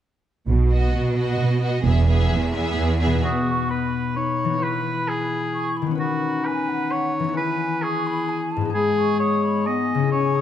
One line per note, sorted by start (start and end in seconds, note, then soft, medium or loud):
0.48 0.87 B1 soft
0.48 0.88 B2 soft
0.71 1.15 B3 soft
0.71 1.15 F#4 soft
0.71 1.16 D#5 soft
0.93 1.34 B2 soft
1.16 1.61 B3 soft
1.16 1.60 F#4 soft
1.16 1.61 D#5 soft
1.40 1.80 B2 soft
1.62 1.84 B3 soft
1.62 1.84 F#4 soft
1.62 1.85 D#5 soft
1.83 2.24 E1 soft
1.83 2.26 E2 soft
1.83 2.07 B3 soft
1.83 2.06 G#4 soft
1.83 2.07 E5 soft
2.07 2.53 B3 soft
2.07 2.51 G#4 soft
2.07 2.52 E5 soft
2.31 2.72 E2 soft
2.53 3.00 B3 soft
2.53 2.99 G#4 soft
2.53 2.99 E5 soft
2.77 3.19 E2 medium
3.00 3.24 B3 soft
3.00 3.23 G#4 soft
3.00 3.24 E5 soft
3.06 4.55 B2 soft
3.10 4.48 B3 soft
3.15 4.60 D#4 soft
3.19 4.57 B4 soft
3.24 4.18 B3 soft
3.24 3.67 F#4 medium
3.24 3.46 D#6 soft
3.47 3.71 C#6 soft
3.70 4.15 B4 medium
3.70 4.61 B5 soft
4.16 4.64 D#4 soft
4.16 4.64 C#5 medium
4.45 5.93 E3 soft
4.49 5.85 B3 soft
4.54 5.98 E4 soft
4.58 5.99 E4 soft
4.58 5.94 B4 soft
4.58 5.52 B5 soft
4.63 5.10 B4 medium
5.08 5.77 G#4 medium
5.53 5.76 C#6 soft
5.76 6.00 B5 soft
5.82 7.30 D#3 soft
5.86 7.23 B3 soft
5.91 7.35 C#4 soft
5.95 7.39 D#4 soft
5.95 7.32 B4 soft
5.99 6.47 F#4 medium
5.99 6.46 B5 soft
6.45 6.93 B4 medium
6.45 6.69 G#5 soft
6.68 7.11 F#5 soft
6.91 7.36 C#5 medium
7.20 8.68 E3 soft
7.24 8.60 B3 soft
7.29 8.72 E4 soft
7.33 10.12 B4 soft
7.33 7.84 B4 medium
7.33 7.82 G#5 soft
7.38 8.74 E4 soft
7.82 8.51 G#4 medium
7.82 8.06 C#6 medium
8.06 8.29 B5 medium
8.28 8.51 G#5 medium
8.51 8.74 A5 medium
8.56 10.05 G#2 soft
8.61 10.07 B3 soft
8.65 10.09 D#4 soft
8.70 10.07 G#4 soft
8.70 8.97 B5 soft
8.74 9.69 G#3 soft
8.74 9.17 G#4 medium
8.97 9.20 C#6 medium
9.19 9.68 C#5 medium
9.19 9.43 D#6 medium
9.44 9.67 B5 medium
9.66 9.99 B3 soft
9.66 10.11 D#5 medium
9.66 10.11 G#5 medium
9.95 10.41 C#3 soft
9.99 10.41 C#4 soft
10.03 10.41 E4 soft
10.08 10.41 G#4 soft
10.08 10.41 C#5 medium
10.12 10.41 C#4 soft
10.12 10.35 G#5 soft
10.36 10.41 D#6 soft